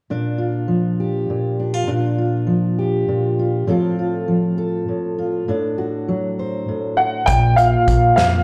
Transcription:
0.10 A#2 D4
0.38 F4
0.68 F3
1.00 G4
1.30 A#2
1.60 D4
1.74 F4
1.87 A#2 D4
2.18 F4
2.47 F3
2.79 G4
3.08 A#2
3.39 F4
3.67 A2 F3 C4 F4 A4
3.99 F4
4.28 F3
4.58 A4
4.88 A2
5.18 F4
5.48 A2 D4
5.78 F#4
6.08 F#3
6.39 C5
6.69 A2
6.97 F#4 F#5
7.26 A#1 A#2 G5, kick, closed hi-hat
7.56 F4 F5, closed hi-hat
7.88 A#1 A#4, kick, closed hi-hat
8.16 F2 F3 F4 F5, snare, closed hi-hat

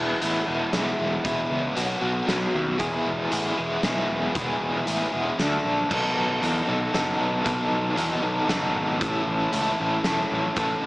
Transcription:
Already playing: E1 E3 G#3 B3 E4
0.21 A1 E3 G#3 B3 E4, closed hi-hat
0.46 E1 E3 G#3 B3 E4
0.72 B1 E3 G#3 B3 E4, snare, closed hi-hat
0.99 E1
1.24 E1 E3 G#3 B3 E4, kick, closed hi-hat
1.51 C#2
1.75 B1 B2 F#3 B3 F#4, closed hi-hat
2.01 B1 B2 F#3 B3 F#4
2.27 B1 B2 F#3 B3 F#4, snare, closed hi-hat
2.55 D#2
2.78 E1 E3 G#3 B3 E4 G#4, kick, closed hi-hat
3.07 E1
3.31 A1 E3 G#3 B3 E4 G#4, closed hi-hat
3.57 E1 E3 G#3 B3 E4 G#4
3.82 B1 E3 G#3 B3 E4 G#4, snare, closed hi-hat
4.10 E1
4.35 E1 E3 G#3 B3 E4 G#4, kick, closed hi-hat
4.62 E1
4.86 A1 E3 G#3 B3 E4 G#4, closed hi-hat
5.12 E1 E3 G#3 B3 E4 G#4
5.38 D2 D3 A3 D4 A4, snare, closed hi-hat
5.65 A#1
5.89 B1 B2 D#3 F#3 B3 D#4 A4, kick, crash
6.17 B1
6.41 E2 B2 D#3 F#3 B3 D#4 A4, closed hi-hat
6.67 B1 B2 D#3 F#3 B3 D#4 A4
6.92 F#1 B2 D#3 F#3 B3 D#4 A4, snare, closed hi-hat
7.20 B1
7.44 B1 B2 D#3 F#3 B3 D#4 A4, kick, closed hi-hat
7.72 B1
7.96 E2 B2 D#3 F#3 B3 D#4 A4, closed hi-hat
8.22 B1 B2 D#3 F#3 B3 D#4 A4
8.48 F#1 B2 D#3 F#3 B3 D#4 A4, snare, closed hi-hat
8.75 G#1
9.00 A1 A2 E3 A3 C#4 E4 A4, kick, closed hi-hat
9.28 A1
9.51 C#2 A2 E3 A3 C#4 E4 A4, closed hi-hat
9.79 A1 A2 E3 A3 C#4 E4 A4
10.04 E1 A2 E3 A3 C#4 E4 A4, snare, closed hi-hat
10.32 A1
10.56 A1 A2 E3 A3 C#4 E4 A4, kick, closed hi-hat

